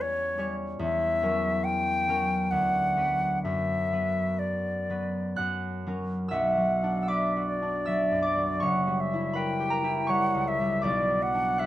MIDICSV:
0, 0, Header, 1, 3, 480
1, 0, Start_track
1, 0, Key_signature, 2, "minor"
1, 0, Tempo, 842697
1, 469, Time_signature, 3, 2, 24, 8
1, 1435, Tempo, 920245
1, 1915, Tempo, 974026
1, 2875, Tempo, 903614
1, 3355, Tempo, 785340
1, 4315, Tempo, 747198
1, 6757, End_track
2, 0, Start_track
2, 0, Title_t, "Flute"
2, 0, Program_c, 0, 73
2, 8, Note_on_c, 0, 73, 78
2, 309, Note_off_c, 0, 73, 0
2, 472, Note_on_c, 0, 76, 84
2, 934, Note_on_c, 0, 79, 85
2, 943, Note_off_c, 0, 76, 0
2, 1428, Note_on_c, 0, 78, 65
2, 1437, Note_off_c, 0, 79, 0
2, 1906, Note_off_c, 0, 78, 0
2, 1909, Note_on_c, 0, 76, 68
2, 2383, Note_on_c, 0, 74, 55
2, 2390, Note_off_c, 0, 76, 0
2, 2872, Note_off_c, 0, 74, 0
2, 3354, Note_on_c, 0, 78, 52
2, 3840, Note_on_c, 0, 76, 53
2, 3849, Note_off_c, 0, 78, 0
2, 4073, Note_off_c, 0, 76, 0
2, 4077, Note_on_c, 0, 74, 60
2, 4810, Note_on_c, 0, 78, 56
2, 4820, Note_off_c, 0, 74, 0
2, 5048, Note_on_c, 0, 76, 55
2, 5058, Note_off_c, 0, 78, 0
2, 5279, Note_on_c, 0, 79, 68
2, 5288, Note_off_c, 0, 76, 0
2, 5752, Note_on_c, 0, 78, 70
2, 5762, Note_off_c, 0, 79, 0
2, 5995, Note_on_c, 0, 76, 64
2, 6005, Note_off_c, 0, 78, 0
2, 6234, Note_off_c, 0, 76, 0
2, 6241, Note_on_c, 0, 74, 59
2, 6475, Note_on_c, 0, 78, 61
2, 6484, Note_off_c, 0, 74, 0
2, 6712, Note_on_c, 0, 76, 60
2, 6722, Note_off_c, 0, 78, 0
2, 6757, Note_off_c, 0, 76, 0
2, 6757, End_track
3, 0, Start_track
3, 0, Title_t, "Harp"
3, 0, Program_c, 1, 46
3, 0, Note_on_c, 1, 40, 54
3, 0, Note_on_c, 1, 55, 42
3, 0, Note_on_c, 1, 61, 43
3, 0, Note_on_c, 1, 73, 45
3, 210, Note_off_c, 1, 55, 0
3, 213, Note_off_c, 1, 61, 0
3, 214, Note_off_c, 1, 73, 0
3, 216, Note_on_c, 1, 55, 41
3, 218, Note_on_c, 1, 61, 41
3, 223, Note_on_c, 1, 73, 46
3, 445, Note_off_c, 1, 40, 0
3, 452, Note_on_c, 1, 40, 58
3, 481, Note_off_c, 1, 55, 0
3, 693, Note_off_c, 1, 61, 0
3, 697, Note_on_c, 1, 54, 41
3, 698, Note_on_c, 1, 61, 43
3, 702, Note_on_c, 1, 70, 43
3, 1179, Note_off_c, 1, 54, 0
3, 1180, Note_off_c, 1, 61, 0
3, 1184, Note_off_c, 1, 70, 0
3, 1184, Note_on_c, 1, 54, 38
3, 1189, Note_on_c, 1, 61, 41
3, 1191, Note_on_c, 1, 70, 43
3, 1435, Note_on_c, 1, 38, 51
3, 1444, Note_off_c, 1, 40, 0
3, 1448, Note_off_c, 1, 73, 0
3, 1453, Note_off_c, 1, 61, 0
3, 1455, Note_off_c, 1, 70, 0
3, 1662, Note_off_c, 1, 54, 0
3, 1669, Note_on_c, 1, 54, 35
3, 1670, Note_on_c, 1, 59, 38
3, 1674, Note_on_c, 1, 71, 43
3, 1919, Note_on_c, 1, 42, 50
3, 1934, Note_off_c, 1, 38, 0
3, 2147, Note_off_c, 1, 59, 0
3, 2149, Note_off_c, 1, 54, 0
3, 2153, Note_off_c, 1, 71, 0
3, 2153, Note_on_c, 1, 54, 35
3, 2155, Note_on_c, 1, 59, 37
3, 2159, Note_on_c, 1, 71, 39
3, 2628, Note_off_c, 1, 54, 0
3, 2630, Note_off_c, 1, 59, 0
3, 2631, Note_off_c, 1, 71, 0
3, 2633, Note_on_c, 1, 54, 34
3, 2636, Note_on_c, 1, 71, 39
3, 2637, Note_on_c, 1, 59, 34
3, 2863, Note_on_c, 1, 90, 77
3, 2866, Note_on_c, 1, 78, 56
3, 2868, Note_off_c, 1, 42, 0
3, 2874, Note_on_c, 1, 42, 43
3, 2897, Note_off_c, 1, 59, 0
3, 2897, Note_off_c, 1, 71, 0
3, 3124, Note_off_c, 1, 54, 0
3, 3129, Note_on_c, 1, 54, 37
3, 3132, Note_on_c, 1, 61, 33
3, 3135, Note_on_c, 1, 70, 40
3, 3351, Note_on_c, 1, 88, 79
3, 3365, Note_on_c, 1, 76, 56
3, 3368, Note_on_c, 1, 35, 51
3, 3374, Note_off_c, 1, 42, 0
3, 3378, Note_off_c, 1, 61, 0
3, 3380, Note_off_c, 1, 70, 0
3, 3520, Note_off_c, 1, 54, 0
3, 3528, Note_on_c, 1, 54, 39
3, 3687, Note_on_c, 1, 62, 42
3, 3797, Note_off_c, 1, 88, 0
3, 3804, Note_on_c, 1, 88, 54
3, 3837, Note_on_c, 1, 86, 74
3, 3843, Note_on_c, 1, 74, 52
3, 3849, Note_on_c, 1, 71, 43
3, 3872, Note_off_c, 1, 88, 0
3, 4010, Note_on_c, 1, 66, 40
3, 4161, Note_off_c, 1, 62, 0
3, 4168, Note_on_c, 1, 62, 39
3, 4310, Note_off_c, 1, 76, 0
3, 4310, Note_on_c, 1, 88, 73
3, 4316, Note_off_c, 1, 54, 0
3, 4318, Note_on_c, 1, 76, 56
3, 4324, Note_on_c, 1, 54, 39
3, 4479, Note_on_c, 1, 42, 38
3, 4540, Note_off_c, 1, 86, 0
3, 4548, Note_on_c, 1, 86, 66
3, 4550, Note_off_c, 1, 74, 0
3, 4558, Note_on_c, 1, 74, 52
3, 4640, Note_off_c, 1, 54, 0
3, 4648, Note_on_c, 1, 54, 40
3, 4724, Note_off_c, 1, 88, 0
3, 4789, Note_on_c, 1, 85, 78
3, 4798, Note_on_c, 1, 73, 56
3, 4802, Note_on_c, 1, 30, 49
3, 4811, Note_off_c, 1, 86, 0
3, 4816, Note_off_c, 1, 74, 0
3, 4817, Note_off_c, 1, 42, 0
3, 4820, Note_off_c, 1, 71, 0
3, 4823, Note_off_c, 1, 62, 0
3, 4824, Note_off_c, 1, 35, 0
3, 4963, Note_on_c, 1, 55, 38
3, 5133, Note_on_c, 1, 64, 45
3, 5215, Note_off_c, 1, 90, 0
3, 5219, Note_off_c, 1, 78, 0
3, 5261, Note_on_c, 1, 83, 75
3, 5271, Note_on_c, 1, 71, 59
3, 5282, Note_on_c, 1, 70, 46
3, 5431, Note_on_c, 1, 67, 46
3, 5494, Note_off_c, 1, 70, 0
3, 5497, Note_on_c, 1, 82, 75
3, 5502, Note_on_c, 1, 70, 53
3, 5578, Note_off_c, 1, 64, 0
3, 5585, Note_on_c, 1, 64, 47
3, 5670, Note_off_c, 1, 83, 0
3, 5725, Note_off_c, 1, 85, 0
3, 5732, Note_on_c, 1, 85, 77
3, 5737, Note_off_c, 1, 73, 0
3, 5741, Note_off_c, 1, 55, 0
3, 5744, Note_on_c, 1, 73, 55
3, 5749, Note_on_c, 1, 55, 42
3, 5911, Note_on_c, 1, 37, 45
3, 6072, Note_off_c, 1, 55, 0
3, 6079, Note_on_c, 1, 55, 45
3, 6213, Note_on_c, 1, 86, 79
3, 6220, Note_on_c, 1, 74, 64
3, 6227, Note_on_c, 1, 35, 59
3, 6244, Note_off_c, 1, 85, 0
3, 6246, Note_off_c, 1, 82, 0
3, 6249, Note_off_c, 1, 70, 0
3, 6250, Note_off_c, 1, 73, 0
3, 6251, Note_off_c, 1, 64, 0
3, 6252, Note_off_c, 1, 37, 0
3, 6253, Note_off_c, 1, 67, 0
3, 6254, Note_off_c, 1, 30, 0
3, 6254, Note_off_c, 1, 76, 0
3, 6255, Note_off_c, 1, 55, 0
3, 6386, Note_off_c, 1, 54, 0
3, 6394, Note_on_c, 1, 54, 43
3, 6500, Note_off_c, 1, 66, 0
3, 6552, Note_on_c, 1, 62, 43
3, 6703, Note_on_c, 1, 90, 79
3, 6713, Note_on_c, 1, 78, 58
3, 6714, Note_off_c, 1, 71, 0
3, 6722, Note_on_c, 1, 71, 46
3, 6757, Note_off_c, 1, 35, 0
3, 6757, Note_off_c, 1, 54, 0
3, 6757, Note_off_c, 1, 62, 0
3, 6757, Note_off_c, 1, 71, 0
3, 6757, Note_off_c, 1, 74, 0
3, 6757, Note_off_c, 1, 78, 0
3, 6757, Note_off_c, 1, 86, 0
3, 6757, Note_off_c, 1, 90, 0
3, 6757, End_track
0, 0, End_of_file